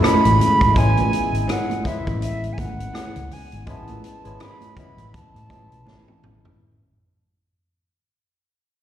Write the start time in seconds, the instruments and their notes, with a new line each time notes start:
Already playing: tine electric piano G#3 A3 C#4 E4 F#4
0.02 clean electric guitar F#3 C#4 E4 A4, flute B5, cross-stick, closed hi-hat, high conga
0.25 fingered electric bass A1, closed hi-hat
0.40 closed hi-hat, low conga
0.61 fingered electric bass G#1, kick, closed hi-hat
0.74 fingered electric bass A1, tine electric piano G#3 B3 C#4 E4, flute G#5, kick, closed hi-hat, muted conga
0.97 closed hi-hat, high conga
1.13 closed hi-hat, muted conga
1.33 fingered electric bass G#1, closed hi-hat
1.48 clean electric guitar E3 B3 C#4 G#4, flute F#5, cross-stick, closed hi-hat
1.70 closed hi-hat, high conga
1.83 tine electric piano G#3 B3 C#4 E4, flute E5, muted fingered electric bass stroke, kick, closed hi-hat, muted conga, low conga
2.07 fingered electric bass A1, kick, cross-stick, closed hi-hat
2.22 flute E5, closed hi-hat
2.44 closed hi-hat
2.53 flute G#5
2.58 fingered electric bass G#1, flute F#5, kick, closed hi-hat, muted conga, high conga
2.80 closed hi-hat
2.94 clean electric guitar E3 B3 C#4 G#4, muted fingered electric bass stroke, cross-stick, closed hi-hat, high conga
3.16 fingered electric bass C#2, closed hi-hat
3.31 flute G#5, open hi-hat, low conga
3.52 fingered electric bass G#1, closed hi-hat
3.66 fingered electric bass A1, tine electric piano G#3 B3 C#4 E4, flute A5, kick, closed hi-hat, muted conga
3.87 closed hi-hat, high conga
4.04 flute A5, closed hi-hat, muted conga
4.24 fingered electric bass G#1, tine electric piano G#3 B3 C#4 E4, closed hi-hat
4.40 clean electric guitar E3 B3 C#4 G#4, flute B5, cross-stick, closed hi-hat, muted conga
4.61 closed hi-hat, high conga
4.76 tine electric piano G#3 B3 C#4 E4, flute B5, muted fingered electric bass stroke, kick, closed hi-hat, muted conga, low conga
4.97 fingered electric bass A1, cross-stick, closed hi-hat
5.13 flute A5, kick, closed hi-hat, muted conga
5.35 fingered electric bass A2, cross-stick, closed hi-hat
5.49 fingered electric bass A1, tine electric piano G#3 B3 C#4 E4, kick, closed hi-hat, muted conga, high conga
5.71 fingered electric bass B1, closed hi-hat
5.86 fingered electric bass G#1, clean electric guitar E3 B3 C#4 G#4, snare, muted conga, high conga
6.08 high tom
6.23 fingered electric bass G#1, mid tom, muted conga, low conga
6.45 floor tom